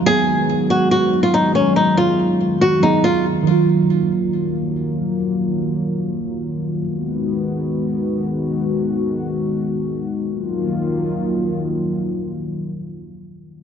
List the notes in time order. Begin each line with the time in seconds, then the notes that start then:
0.02 F#3
0.06 D#3 F#3 G#3 B3 G#4
0.10 G#4
0.70 F#4
0.91 F#4
1.23 F4
1.34 D#4
1.55 C#4
1.76 D#4
1.97 F4
2.61 F#4
2.80 F#3 B3 D#4
2.84 G#4
3.04 F4
3.43 D#3 F#3 A#3 F4
3.47 F#3
3.51 F4
6.87 D#3 G#3 B3 F#4
10.27 D#3 F#3 A#3 F4